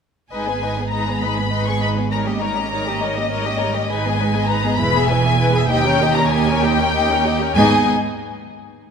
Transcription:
0.31 G#1 G#2 G#3 D#4 B4 D#5 G#5
0.46 B3 G#4 B4
0.62 G#3 D#4 B4 D#5
0.77 B3 G#4 B4
0.91 G#3 D#4 B4 D#5 A#5
1.09 B3 G#4 B4
1.21 G#3 D#4 B4 D#5 B5
1.37 B3 G#4 B4
1.52 G#3 D#4 B4 D#5
1.67 B3 G#4 B4 C#6
1.81 G#3 D#4 B4 D#5 B5
1.97 B3 G#4 B4
2.11 G3 D#4 A#4 C#5 A#5
2.27 A#3 C#4 G4 D#5
2.41 G3 D#4 A#4 C#5 A#5
2.57 A#3 C#4 G4 D#5
2.71 G3 D#4 A#4 C#5
2.86 A#3 C#4 G4 D#5
3.02 G3 D#4 A#4 C#5 D#5
3.17 A#3 C#4 G4 D#5
3.31 G3 D#4 A#4 C#5
3.45 A#3 C#4 G4 D#5
3.60 G3 D#4 A#4 C#5
3.75 A#3 C#4 G4 D#5
3.89 G#1 G#2 G#3 D#4 B4 G#5
4.06 B3 G#4 D#5
4.19 G#3 D#4 B4
4.35 B3 G#4 D#5
4.48 G#3 D#4 B4 A#5
4.64 B3 G#4 D#5
4.78 E1 E2 G#3 E4 B4 B5
4.93 B3 G#4 E5
5.08 G#3 E4 B4 G#5
5.22 B3 G#4 E5
5.38 G#3 E4 B4
5.52 B3 G#4 E5
5.68 D#2 A#3 D#4 G4 D#5 G5
5.83 C#4 G4
5.87 A#4 C#5
5.99 A#3 D#4 D#5
6.03 G4
6.14 C#4 G4 A#5
6.19 A#4 C#5
6.29 A#3 D#4 G4 D#5 G#5
6.45 C#4 G4 A#4 C#5
6.61 A#3 D#4 G4 D#5 G5
6.76 C#4 G4 C#5
6.80 A#4
6.92 A#3 D#4 G4 D#5
7.08 C#4 G4
7.12 A#4 C#5
7.24 A#3 D#4 G4 D#5
7.39 C#4 G4 A#4 C#5
7.55 G#1 G#2 B3 D#4 G#4 D#5 G#5

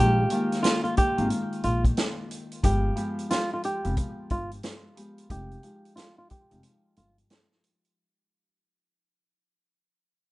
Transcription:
Already playing: A#1 D#3 G#3 A#3 F4 G4
0.30 D#3 G#3 A#3 F4, closed hi-hat
0.52 snare, closed hi-hat
0.63 F4, snare, closed hi-hat
0.84 F4, closed hi-hat
0.97 G4, kick, closed hi-hat
1.17 G#1 D#3 G#3 A#3 F4, closed hi-hat
1.30 closed hi-hat
1.52 closed hi-hat
1.63 A#1 F4, closed hi-hat
1.85 kick, closed hi-hat
1.97 snare, closed hi-hat
2.31 closed hi-hat
2.52 closed hi-hat
2.63 G1 F3 G#3 B3 G4, kick, closed hi-hat
2.96 F3 G#3 B3 G4, closed hi-hat
3.19 closed hi-hat
3.30 F4, snare, closed hi-hat
3.53 F4
3.63 G4, closed hi-hat
3.84 F1 F3 G#3 B3 G4, closed hi-hat
3.97 kick, closed hi-hat
4.30 G1 F4, kick, closed hi-hat
4.51 closed hi-hat
4.63 snare, closed hi-hat
4.96 F3 G#3 B3 G4, closed hi-hat
5.18 closed hi-hat
5.29 F1 F3 G#3 D#4 G4, kick, closed hi-hat
5.51 closed hi-hat
5.63 F3 G#3 D#4 G4, closed hi-hat
5.85 closed hi-hat
5.96 F4, snare, closed hi-hat
6.18 F4
6.30 G4, kick, closed hi-hat
6.50 F1 F3 G#3 D#4 G4, closed hi-hat
6.63 closed hi-hat
6.96 G1 F4, closed hi-hat
7.18 closed hi-hat
7.30 snare, closed hi-hat
7.52 snare
7.64 closed hi-hat
7.85 closed hi-hat

